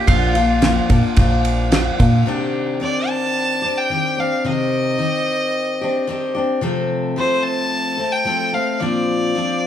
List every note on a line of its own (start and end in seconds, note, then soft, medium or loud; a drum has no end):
0.07 0.81 A#1 loud
0.07 0.36 A#2 medium
0.07 0.36 F3 medium
0.07 0.36 A#3 medium
0.07 0.35 D4 medium
0.07 1.14 F4 loud
0.07 0.33 F4 loud
0.07 kick loud
0.07 ride loud
0.35 0.62 A#3 medium
0.35 0.63 D4 medium
0.35 0.62 F4 medium
0.35 ride medium
0.62 0.90 F3 medium
0.62 0.90 A#3 medium
0.62 0.90 D4 medium
0.62 0.88 F4 medium
0.62 snare loud
0.62 ride loud
0.89 1.02 A#2 medium
0.89 1.17 A#3 medium
0.89 1.17 D4 medium
0.89 1.17 F4 medium
0.89 kick medium
0.89 ride medium
1.16 1.91 A#1 medium
1.16 1.72 A#2 medium
1.16 1.70 F3 medium
1.16 1.71 A#3 medium
1.16 1.73 D4 medium
1.16 1.73 F4 medium
1.16 kick loud
1.16 ride loud
1.45 ride medium
1.71 1.99 F3 medium
1.71 1.99 A#3 medium
1.71 1.99 D4 medium
1.71 1.97 F4 medium
1.71 snare loud
1.71 ride loud
1.98 2.24 A#2 medium
1.98 2.27 A#3 soft
1.98 2.27 D4 soft
1.98 2.26 F4 medium
1.98 kick medium
1.98 ride medium
2.26 2.81 C3 medium
2.26 2.79 D#3 medium
2.26 2.81 C4 medium
2.26 2.81 D4 loud
2.26 2.82 G4 medium
2.80 3.62 D#3 medium
2.80 3.65 C4 medium
2.80 3.63 D4 medium
2.80 3.61 G4 medium
2.80 3.10 D5 loud
3.09 3.79 A5 loud
3.62 3.90 C4 soft
3.62 3.91 D4 soft
3.62 3.90 G4 medium
3.78 4.21 G5 loud
3.90 4.17 D#3 medium
3.90 4.18 C4 medium
3.90 4.17 D4 medium
3.90 4.16 G4 medium
4.17 4.44 C4 soft
4.17 4.45 D4 medium
4.17 4.44 G4 medium
4.17 4.49 F5 medium
4.45 4.99 C3 medium
4.45 4.97 D#3 medium
4.45 4.99 C4 medium
4.45 5.00 G4 medium
4.45 6.37 D#5 loud
4.98 5.81 D#3 medium
4.98 5.84 C4 medium
4.98 5.80 G4 medium
5.81 6.07 C4 soft
5.81 6.09 D4 medium
5.81 6.08 G4 medium
6.07 6.35 D#3 medium
6.07 6.36 C4 medium
6.07 6.35 D4 medium
6.07 6.33 G4 medium
6.35 6.62 C4 medium
6.35 6.63 D4 medium
6.35 6.62 G4 medium
6.61 7.16 C3 medium
6.61 7.16 F3 medium
6.61 7.16 A3 medium
6.61 7.18 C4 medium
6.61 7.18 A4 loud
7.16 7.98 F3 medium
7.16 7.99 A3 medium
7.16 7.99 C4 medium
7.16 7.96 A4 medium
7.16 7.45 C5 loud
7.43 8.13 A5 loud
7.97 8.24 A3 soft
7.97 8.26 C4 medium
7.97 8.25 A4 medium
8.12 8.56 G5 loud
8.25 8.52 F3 medium
8.25 8.53 A3 medium
8.25 8.53 C4 medium
8.25 8.52 A4 medium
8.53 8.82 A3 soft
8.53 8.81 C4 medium
8.53 8.80 A4 medium
8.53 8.81 F5 medium
8.80 9.35 A#2 medium
8.80 9.34 F3 medium
8.80 9.36 C4 medium
8.80 9.37 D4 medium
8.80 9.36 F4 medium
8.80 9.67 D5 loud
9.35 9.67 F3 medium
9.35 9.67 C4 medium
9.35 9.67 D4 medium
9.35 9.67 F4 medium